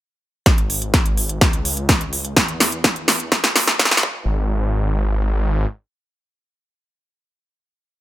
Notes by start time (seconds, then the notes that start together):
0.46 G#1, kick, snare, closed hi-hat
0.58 closed hi-hat
0.70 open hi-hat
0.82 closed hi-hat
0.94 kick, snare, closed hi-hat
1.06 closed hi-hat
1.17 open hi-hat
1.29 closed hi-hat
1.41 C#2, kick, snare, closed hi-hat
1.53 closed hi-hat
1.65 open hi-hat
1.77 closed hi-hat
1.89 kick, snare, closed hi-hat
2.01 closed hi-hat
2.13 open hi-hat
2.25 closed hi-hat
2.37 E2, kick, snare, closed hi-hat
2.48 closed hi-hat
2.60 snare, open hi-hat
2.72 closed hi-hat
2.84 kick, snare, closed hi-hat
2.96 closed hi-hat
3.08 snare, open hi-hat
3.20 closed hi-hat
3.32 B1, kick, snare, closed hi-hat
3.44 snare, closed hi-hat
3.56 snare, open hi-hat
3.68 snare, closed hi-hat
3.79 kick, snare, closed hi-hat
3.85 snare
3.91 snare, closed hi-hat
3.97 snare
4.03 G#1, kick